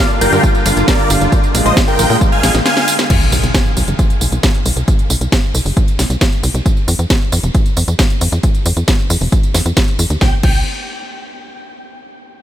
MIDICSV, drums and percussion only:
0, 0, Header, 1, 2, 480
1, 0, Start_track
1, 0, Tempo, 444444
1, 1429, Time_signature, 4, 2, 24, 8
1, 13415, End_track
2, 0, Start_track
2, 0, Title_t, "Drums"
2, 111, Note_on_c, 9, 42, 28
2, 111, Note_on_c, 9, 54, 22
2, 219, Note_off_c, 9, 42, 0
2, 219, Note_off_c, 9, 54, 0
2, 231, Note_on_c, 9, 46, 100
2, 231, Note_on_c, 9, 51, 82
2, 231, Note_on_c, 9, 54, 77
2, 339, Note_off_c, 9, 46, 0
2, 339, Note_off_c, 9, 51, 0
2, 339, Note_off_c, 9, 54, 0
2, 351, Note_on_c, 9, 42, 56
2, 351, Note_on_c, 9, 54, 32
2, 459, Note_off_c, 9, 42, 0
2, 459, Note_off_c, 9, 54, 0
2, 469, Note_on_c, 9, 36, 117
2, 470, Note_on_c, 9, 42, 54
2, 470, Note_on_c, 9, 54, 44
2, 577, Note_off_c, 9, 36, 0
2, 578, Note_off_c, 9, 42, 0
2, 578, Note_off_c, 9, 54, 0
2, 590, Note_on_c, 9, 42, 28
2, 590, Note_on_c, 9, 54, 23
2, 698, Note_off_c, 9, 42, 0
2, 698, Note_off_c, 9, 54, 0
2, 710, Note_on_c, 9, 46, 101
2, 710, Note_on_c, 9, 51, 85
2, 710, Note_on_c, 9, 54, 76
2, 818, Note_off_c, 9, 46, 0
2, 818, Note_off_c, 9, 51, 0
2, 818, Note_off_c, 9, 54, 0
2, 831, Note_on_c, 9, 42, 57
2, 831, Note_on_c, 9, 54, 32
2, 939, Note_off_c, 9, 42, 0
2, 939, Note_off_c, 9, 54, 0
2, 949, Note_on_c, 9, 36, 116
2, 950, Note_on_c, 9, 38, 121
2, 950, Note_on_c, 9, 42, 55
2, 950, Note_on_c, 9, 54, 45
2, 1057, Note_off_c, 9, 36, 0
2, 1058, Note_off_c, 9, 38, 0
2, 1058, Note_off_c, 9, 42, 0
2, 1058, Note_off_c, 9, 54, 0
2, 1070, Note_on_c, 9, 42, 28
2, 1070, Note_on_c, 9, 54, 23
2, 1178, Note_off_c, 9, 42, 0
2, 1178, Note_off_c, 9, 54, 0
2, 1190, Note_on_c, 9, 46, 99
2, 1190, Note_on_c, 9, 51, 83
2, 1190, Note_on_c, 9, 54, 79
2, 1298, Note_off_c, 9, 46, 0
2, 1298, Note_off_c, 9, 51, 0
2, 1298, Note_off_c, 9, 54, 0
2, 1311, Note_on_c, 9, 42, 57
2, 1311, Note_on_c, 9, 54, 33
2, 1419, Note_off_c, 9, 42, 0
2, 1419, Note_off_c, 9, 54, 0
2, 1429, Note_on_c, 9, 36, 119
2, 1430, Note_on_c, 9, 42, 59
2, 1430, Note_on_c, 9, 54, 43
2, 1537, Note_off_c, 9, 36, 0
2, 1538, Note_off_c, 9, 42, 0
2, 1538, Note_off_c, 9, 54, 0
2, 1550, Note_on_c, 9, 42, 29
2, 1550, Note_on_c, 9, 54, 22
2, 1658, Note_off_c, 9, 42, 0
2, 1658, Note_off_c, 9, 54, 0
2, 1670, Note_on_c, 9, 46, 104
2, 1670, Note_on_c, 9, 51, 84
2, 1670, Note_on_c, 9, 54, 73
2, 1778, Note_off_c, 9, 46, 0
2, 1778, Note_off_c, 9, 51, 0
2, 1778, Note_off_c, 9, 54, 0
2, 1790, Note_on_c, 9, 42, 57
2, 1790, Note_on_c, 9, 54, 33
2, 1898, Note_off_c, 9, 42, 0
2, 1898, Note_off_c, 9, 54, 0
2, 1909, Note_on_c, 9, 36, 119
2, 1910, Note_on_c, 9, 38, 124
2, 1910, Note_on_c, 9, 42, 58
2, 1910, Note_on_c, 9, 54, 42
2, 2017, Note_off_c, 9, 36, 0
2, 2018, Note_off_c, 9, 38, 0
2, 2018, Note_off_c, 9, 42, 0
2, 2018, Note_off_c, 9, 54, 0
2, 2030, Note_on_c, 9, 42, 28
2, 2030, Note_on_c, 9, 54, 21
2, 2138, Note_off_c, 9, 42, 0
2, 2138, Note_off_c, 9, 54, 0
2, 2149, Note_on_c, 9, 46, 104
2, 2149, Note_on_c, 9, 51, 81
2, 2149, Note_on_c, 9, 54, 72
2, 2257, Note_off_c, 9, 46, 0
2, 2257, Note_off_c, 9, 51, 0
2, 2257, Note_off_c, 9, 54, 0
2, 2269, Note_on_c, 9, 46, 61
2, 2269, Note_on_c, 9, 54, 32
2, 2377, Note_off_c, 9, 46, 0
2, 2377, Note_off_c, 9, 54, 0
2, 2389, Note_on_c, 9, 36, 120
2, 2389, Note_on_c, 9, 42, 56
2, 2389, Note_on_c, 9, 54, 44
2, 2497, Note_off_c, 9, 36, 0
2, 2497, Note_off_c, 9, 42, 0
2, 2497, Note_off_c, 9, 54, 0
2, 2509, Note_on_c, 9, 42, 29
2, 2509, Note_on_c, 9, 54, 22
2, 2617, Note_off_c, 9, 42, 0
2, 2617, Note_off_c, 9, 54, 0
2, 2629, Note_on_c, 9, 38, 62
2, 2629, Note_on_c, 9, 46, 105
2, 2629, Note_on_c, 9, 51, 82
2, 2629, Note_on_c, 9, 54, 72
2, 2737, Note_off_c, 9, 38, 0
2, 2737, Note_off_c, 9, 46, 0
2, 2737, Note_off_c, 9, 51, 0
2, 2737, Note_off_c, 9, 54, 0
2, 2749, Note_on_c, 9, 38, 62
2, 2749, Note_on_c, 9, 54, 32
2, 2857, Note_off_c, 9, 38, 0
2, 2857, Note_off_c, 9, 54, 0
2, 2868, Note_on_c, 9, 38, 80
2, 2868, Note_on_c, 9, 42, 59
2, 2868, Note_on_c, 9, 54, 42
2, 2976, Note_off_c, 9, 38, 0
2, 2976, Note_off_c, 9, 42, 0
2, 2976, Note_off_c, 9, 54, 0
2, 2989, Note_on_c, 9, 38, 76
2, 2989, Note_on_c, 9, 42, 29
2, 2989, Note_on_c, 9, 54, 21
2, 3097, Note_off_c, 9, 38, 0
2, 3097, Note_off_c, 9, 42, 0
2, 3097, Note_off_c, 9, 54, 0
2, 3109, Note_on_c, 9, 46, 104
2, 3109, Note_on_c, 9, 51, 84
2, 3109, Note_on_c, 9, 54, 74
2, 3217, Note_off_c, 9, 46, 0
2, 3217, Note_off_c, 9, 51, 0
2, 3217, Note_off_c, 9, 54, 0
2, 3229, Note_on_c, 9, 38, 92
2, 3229, Note_on_c, 9, 42, 58
2, 3229, Note_on_c, 9, 54, 32
2, 3337, Note_off_c, 9, 38, 0
2, 3337, Note_off_c, 9, 42, 0
2, 3337, Note_off_c, 9, 54, 0
2, 3349, Note_on_c, 9, 36, 115
2, 3349, Note_on_c, 9, 42, 82
2, 3349, Note_on_c, 9, 49, 98
2, 3349, Note_on_c, 9, 54, 40
2, 3457, Note_off_c, 9, 36, 0
2, 3457, Note_off_c, 9, 42, 0
2, 3457, Note_off_c, 9, 49, 0
2, 3457, Note_off_c, 9, 54, 0
2, 3469, Note_on_c, 9, 54, 19
2, 3577, Note_off_c, 9, 54, 0
2, 3589, Note_on_c, 9, 46, 103
2, 3589, Note_on_c, 9, 54, 68
2, 3697, Note_off_c, 9, 46, 0
2, 3697, Note_off_c, 9, 54, 0
2, 3709, Note_on_c, 9, 42, 56
2, 3709, Note_on_c, 9, 54, 31
2, 3817, Note_off_c, 9, 42, 0
2, 3817, Note_off_c, 9, 54, 0
2, 3829, Note_on_c, 9, 36, 119
2, 3829, Note_on_c, 9, 38, 123
2, 3829, Note_on_c, 9, 42, 80
2, 3829, Note_on_c, 9, 54, 40
2, 3937, Note_off_c, 9, 36, 0
2, 3937, Note_off_c, 9, 38, 0
2, 3937, Note_off_c, 9, 42, 0
2, 3937, Note_off_c, 9, 54, 0
2, 3949, Note_on_c, 9, 54, 20
2, 4057, Note_off_c, 9, 54, 0
2, 4069, Note_on_c, 9, 46, 101
2, 4069, Note_on_c, 9, 54, 68
2, 4177, Note_off_c, 9, 46, 0
2, 4177, Note_off_c, 9, 54, 0
2, 4189, Note_on_c, 9, 42, 55
2, 4189, Note_on_c, 9, 54, 30
2, 4297, Note_off_c, 9, 42, 0
2, 4297, Note_off_c, 9, 54, 0
2, 4309, Note_on_c, 9, 36, 116
2, 4309, Note_on_c, 9, 42, 82
2, 4309, Note_on_c, 9, 54, 40
2, 4417, Note_off_c, 9, 36, 0
2, 4417, Note_off_c, 9, 42, 0
2, 4417, Note_off_c, 9, 54, 0
2, 4429, Note_on_c, 9, 42, 38
2, 4429, Note_on_c, 9, 54, 20
2, 4537, Note_off_c, 9, 42, 0
2, 4537, Note_off_c, 9, 54, 0
2, 4548, Note_on_c, 9, 46, 105
2, 4548, Note_on_c, 9, 54, 68
2, 4656, Note_off_c, 9, 46, 0
2, 4656, Note_off_c, 9, 54, 0
2, 4669, Note_on_c, 9, 42, 53
2, 4669, Note_on_c, 9, 54, 31
2, 4777, Note_off_c, 9, 42, 0
2, 4777, Note_off_c, 9, 54, 0
2, 4788, Note_on_c, 9, 38, 121
2, 4788, Note_on_c, 9, 42, 85
2, 4788, Note_on_c, 9, 54, 41
2, 4789, Note_on_c, 9, 36, 118
2, 4896, Note_off_c, 9, 38, 0
2, 4896, Note_off_c, 9, 42, 0
2, 4896, Note_off_c, 9, 54, 0
2, 4897, Note_off_c, 9, 36, 0
2, 4908, Note_on_c, 9, 42, 38
2, 4908, Note_on_c, 9, 54, 20
2, 5016, Note_off_c, 9, 42, 0
2, 5016, Note_off_c, 9, 54, 0
2, 5028, Note_on_c, 9, 46, 103
2, 5028, Note_on_c, 9, 54, 72
2, 5136, Note_off_c, 9, 46, 0
2, 5136, Note_off_c, 9, 54, 0
2, 5149, Note_on_c, 9, 42, 54
2, 5149, Note_on_c, 9, 54, 29
2, 5257, Note_off_c, 9, 42, 0
2, 5257, Note_off_c, 9, 54, 0
2, 5268, Note_on_c, 9, 42, 81
2, 5268, Note_on_c, 9, 54, 39
2, 5269, Note_on_c, 9, 36, 122
2, 5376, Note_off_c, 9, 42, 0
2, 5376, Note_off_c, 9, 54, 0
2, 5377, Note_off_c, 9, 36, 0
2, 5389, Note_on_c, 9, 42, 36
2, 5389, Note_on_c, 9, 54, 19
2, 5497, Note_off_c, 9, 42, 0
2, 5497, Note_off_c, 9, 54, 0
2, 5509, Note_on_c, 9, 46, 106
2, 5509, Note_on_c, 9, 54, 69
2, 5617, Note_off_c, 9, 46, 0
2, 5617, Note_off_c, 9, 54, 0
2, 5629, Note_on_c, 9, 42, 54
2, 5629, Note_on_c, 9, 54, 31
2, 5737, Note_off_c, 9, 42, 0
2, 5737, Note_off_c, 9, 54, 0
2, 5749, Note_on_c, 9, 36, 122
2, 5749, Note_on_c, 9, 38, 123
2, 5749, Note_on_c, 9, 42, 79
2, 5749, Note_on_c, 9, 54, 39
2, 5857, Note_off_c, 9, 36, 0
2, 5857, Note_off_c, 9, 38, 0
2, 5857, Note_off_c, 9, 42, 0
2, 5857, Note_off_c, 9, 54, 0
2, 5870, Note_on_c, 9, 54, 20
2, 5978, Note_off_c, 9, 54, 0
2, 5989, Note_on_c, 9, 46, 104
2, 5989, Note_on_c, 9, 54, 71
2, 6097, Note_off_c, 9, 46, 0
2, 6097, Note_off_c, 9, 54, 0
2, 6110, Note_on_c, 9, 46, 63
2, 6110, Note_on_c, 9, 54, 30
2, 6218, Note_off_c, 9, 46, 0
2, 6218, Note_off_c, 9, 54, 0
2, 6229, Note_on_c, 9, 36, 124
2, 6229, Note_on_c, 9, 42, 79
2, 6229, Note_on_c, 9, 54, 40
2, 6337, Note_off_c, 9, 36, 0
2, 6337, Note_off_c, 9, 42, 0
2, 6337, Note_off_c, 9, 54, 0
2, 6350, Note_on_c, 9, 42, 38
2, 6350, Note_on_c, 9, 54, 20
2, 6458, Note_off_c, 9, 42, 0
2, 6458, Note_off_c, 9, 54, 0
2, 6469, Note_on_c, 9, 38, 63
2, 6469, Note_on_c, 9, 46, 108
2, 6469, Note_on_c, 9, 54, 71
2, 6577, Note_off_c, 9, 38, 0
2, 6577, Note_off_c, 9, 46, 0
2, 6577, Note_off_c, 9, 54, 0
2, 6589, Note_on_c, 9, 42, 53
2, 6589, Note_on_c, 9, 54, 30
2, 6697, Note_off_c, 9, 42, 0
2, 6697, Note_off_c, 9, 54, 0
2, 6709, Note_on_c, 9, 38, 123
2, 6709, Note_on_c, 9, 42, 78
2, 6709, Note_on_c, 9, 54, 41
2, 6710, Note_on_c, 9, 36, 125
2, 6817, Note_off_c, 9, 38, 0
2, 6817, Note_off_c, 9, 42, 0
2, 6817, Note_off_c, 9, 54, 0
2, 6818, Note_off_c, 9, 36, 0
2, 6829, Note_on_c, 9, 42, 38
2, 6829, Note_on_c, 9, 54, 21
2, 6937, Note_off_c, 9, 42, 0
2, 6937, Note_off_c, 9, 54, 0
2, 6949, Note_on_c, 9, 46, 109
2, 6949, Note_on_c, 9, 54, 67
2, 7057, Note_off_c, 9, 46, 0
2, 7057, Note_off_c, 9, 54, 0
2, 7069, Note_on_c, 9, 42, 53
2, 7069, Note_on_c, 9, 54, 29
2, 7177, Note_off_c, 9, 42, 0
2, 7177, Note_off_c, 9, 54, 0
2, 7190, Note_on_c, 9, 36, 124
2, 7190, Note_on_c, 9, 42, 78
2, 7190, Note_on_c, 9, 54, 42
2, 7298, Note_off_c, 9, 36, 0
2, 7298, Note_off_c, 9, 42, 0
2, 7298, Note_off_c, 9, 54, 0
2, 7310, Note_on_c, 9, 54, 20
2, 7418, Note_off_c, 9, 54, 0
2, 7430, Note_on_c, 9, 46, 110
2, 7430, Note_on_c, 9, 54, 73
2, 7538, Note_off_c, 9, 46, 0
2, 7538, Note_off_c, 9, 54, 0
2, 7549, Note_on_c, 9, 42, 53
2, 7549, Note_on_c, 9, 54, 31
2, 7657, Note_off_c, 9, 42, 0
2, 7657, Note_off_c, 9, 54, 0
2, 7670, Note_on_c, 9, 36, 122
2, 7670, Note_on_c, 9, 38, 121
2, 7670, Note_on_c, 9, 42, 76
2, 7670, Note_on_c, 9, 54, 41
2, 7778, Note_off_c, 9, 36, 0
2, 7778, Note_off_c, 9, 38, 0
2, 7778, Note_off_c, 9, 42, 0
2, 7778, Note_off_c, 9, 54, 0
2, 7790, Note_on_c, 9, 54, 20
2, 7898, Note_off_c, 9, 54, 0
2, 7909, Note_on_c, 9, 46, 108
2, 7909, Note_on_c, 9, 54, 71
2, 8017, Note_off_c, 9, 46, 0
2, 8017, Note_off_c, 9, 54, 0
2, 8029, Note_on_c, 9, 42, 52
2, 8029, Note_on_c, 9, 54, 30
2, 8137, Note_off_c, 9, 42, 0
2, 8137, Note_off_c, 9, 54, 0
2, 8149, Note_on_c, 9, 42, 74
2, 8149, Note_on_c, 9, 54, 40
2, 8150, Note_on_c, 9, 36, 127
2, 8257, Note_off_c, 9, 42, 0
2, 8257, Note_off_c, 9, 54, 0
2, 8258, Note_off_c, 9, 36, 0
2, 8269, Note_on_c, 9, 42, 37
2, 8269, Note_on_c, 9, 54, 21
2, 8377, Note_off_c, 9, 42, 0
2, 8377, Note_off_c, 9, 54, 0
2, 8389, Note_on_c, 9, 46, 109
2, 8389, Note_on_c, 9, 54, 72
2, 8497, Note_off_c, 9, 46, 0
2, 8497, Note_off_c, 9, 54, 0
2, 8508, Note_on_c, 9, 42, 51
2, 8508, Note_on_c, 9, 54, 31
2, 8616, Note_off_c, 9, 42, 0
2, 8616, Note_off_c, 9, 54, 0
2, 8628, Note_on_c, 9, 38, 119
2, 8628, Note_on_c, 9, 42, 80
2, 8628, Note_on_c, 9, 54, 41
2, 8630, Note_on_c, 9, 36, 125
2, 8736, Note_off_c, 9, 38, 0
2, 8736, Note_off_c, 9, 42, 0
2, 8736, Note_off_c, 9, 54, 0
2, 8738, Note_off_c, 9, 36, 0
2, 8749, Note_on_c, 9, 42, 36
2, 8749, Note_on_c, 9, 54, 21
2, 8857, Note_off_c, 9, 42, 0
2, 8857, Note_off_c, 9, 54, 0
2, 8869, Note_on_c, 9, 46, 108
2, 8869, Note_on_c, 9, 54, 71
2, 8977, Note_off_c, 9, 46, 0
2, 8977, Note_off_c, 9, 54, 0
2, 8989, Note_on_c, 9, 42, 52
2, 8989, Note_on_c, 9, 54, 31
2, 9097, Note_off_c, 9, 42, 0
2, 9097, Note_off_c, 9, 54, 0
2, 9108, Note_on_c, 9, 42, 78
2, 9108, Note_on_c, 9, 54, 44
2, 9110, Note_on_c, 9, 36, 120
2, 9216, Note_off_c, 9, 42, 0
2, 9216, Note_off_c, 9, 54, 0
2, 9218, Note_off_c, 9, 36, 0
2, 9229, Note_on_c, 9, 42, 35
2, 9229, Note_on_c, 9, 54, 21
2, 9337, Note_off_c, 9, 42, 0
2, 9337, Note_off_c, 9, 54, 0
2, 9349, Note_on_c, 9, 46, 106
2, 9349, Note_on_c, 9, 54, 74
2, 9457, Note_off_c, 9, 46, 0
2, 9457, Note_off_c, 9, 54, 0
2, 9468, Note_on_c, 9, 42, 51
2, 9468, Note_on_c, 9, 54, 33
2, 9576, Note_off_c, 9, 42, 0
2, 9576, Note_off_c, 9, 54, 0
2, 9588, Note_on_c, 9, 38, 117
2, 9588, Note_on_c, 9, 42, 74
2, 9588, Note_on_c, 9, 54, 43
2, 9589, Note_on_c, 9, 36, 121
2, 9696, Note_off_c, 9, 38, 0
2, 9696, Note_off_c, 9, 42, 0
2, 9696, Note_off_c, 9, 54, 0
2, 9697, Note_off_c, 9, 36, 0
2, 9709, Note_on_c, 9, 54, 21
2, 9817, Note_off_c, 9, 54, 0
2, 9829, Note_on_c, 9, 46, 107
2, 9829, Note_on_c, 9, 54, 74
2, 9937, Note_off_c, 9, 46, 0
2, 9937, Note_off_c, 9, 54, 0
2, 9949, Note_on_c, 9, 46, 64
2, 9949, Note_on_c, 9, 54, 31
2, 10057, Note_off_c, 9, 46, 0
2, 10057, Note_off_c, 9, 54, 0
2, 10069, Note_on_c, 9, 36, 125
2, 10069, Note_on_c, 9, 42, 76
2, 10069, Note_on_c, 9, 54, 42
2, 10177, Note_off_c, 9, 36, 0
2, 10177, Note_off_c, 9, 42, 0
2, 10177, Note_off_c, 9, 54, 0
2, 10188, Note_on_c, 9, 42, 34
2, 10188, Note_on_c, 9, 54, 21
2, 10296, Note_off_c, 9, 42, 0
2, 10296, Note_off_c, 9, 54, 0
2, 10308, Note_on_c, 9, 38, 60
2, 10308, Note_on_c, 9, 46, 107
2, 10308, Note_on_c, 9, 54, 75
2, 10416, Note_off_c, 9, 38, 0
2, 10416, Note_off_c, 9, 46, 0
2, 10416, Note_off_c, 9, 54, 0
2, 10429, Note_on_c, 9, 42, 49
2, 10429, Note_on_c, 9, 54, 32
2, 10537, Note_off_c, 9, 42, 0
2, 10537, Note_off_c, 9, 54, 0
2, 10549, Note_on_c, 9, 38, 120
2, 10549, Note_on_c, 9, 42, 74
2, 10549, Note_on_c, 9, 54, 42
2, 10550, Note_on_c, 9, 36, 126
2, 10657, Note_off_c, 9, 38, 0
2, 10657, Note_off_c, 9, 42, 0
2, 10657, Note_off_c, 9, 54, 0
2, 10658, Note_off_c, 9, 36, 0
2, 10669, Note_on_c, 9, 42, 36
2, 10669, Note_on_c, 9, 54, 22
2, 10777, Note_off_c, 9, 42, 0
2, 10777, Note_off_c, 9, 54, 0
2, 10789, Note_on_c, 9, 46, 109
2, 10789, Note_on_c, 9, 54, 75
2, 10897, Note_off_c, 9, 46, 0
2, 10897, Note_off_c, 9, 54, 0
2, 10910, Note_on_c, 9, 42, 50
2, 10910, Note_on_c, 9, 54, 32
2, 11018, Note_off_c, 9, 42, 0
2, 11018, Note_off_c, 9, 54, 0
2, 11029, Note_on_c, 9, 38, 87
2, 11030, Note_on_c, 9, 36, 109
2, 11137, Note_off_c, 9, 38, 0
2, 11138, Note_off_c, 9, 36, 0
2, 11269, Note_on_c, 9, 36, 109
2, 11269, Note_on_c, 9, 49, 87
2, 11377, Note_off_c, 9, 36, 0
2, 11377, Note_off_c, 9, 49, 0
2, 13415, End_track
0, 0, End_of_file